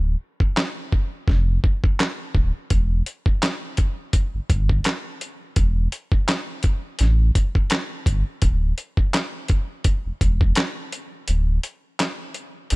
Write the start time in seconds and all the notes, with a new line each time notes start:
Already playing: D1
0.40 kick
0.57 snare, clap
0.92 kick
1.28 F1, kick, snare
1.64 kick
1.84 kick
2.00 snare, clap
2.35 D1, kick
2.70 E1, kick, closed hi-hat
3.06 closed hi-hat
3.26 kick
3.42 snare, clap, closed hi-hat
3.77 kick, closed hi-hat
4.13 kick, closed hi-hat
4.34 G1
4.50 G1, kick, closed hi-hat
4.69 kick
4.84 snare, clap, closed hi-hat
5.21 closed hi-hat
5.56 E1, kick, closed hi-hat
5.92 closed hi-hat
6.12 kick
6.28 snare, clap, closed hi-hat
6.63 kick, closed hi-hat
6.99 A1, snare, closed hi-hat
7.35 kick, closed hi-hat
7.55 kick
7.70 snare, clap, closed hi-hat
8.06 G1, kick, closed hi-hat
8.42 D1, kick, closed hi-hat
8.78 closed hi-hat
8.97 kick
9.14 snare, clap, closed hi-hat
9.48 kick, closed hi-hat
9.84 kick, closed hi-hat
10.05 E1
10.21 E1, kick, closed hi-hat
10.41 kick
10.55 snare, clap, closed hi-hat
10.92 closed hi-hat
11.28 D1, closed hi-hat
11.63 closed hi-hat
11.99 snare, clap, closed hi-hat
12.34 closed hi-hat
12.70 F1, snare, closed hi-hat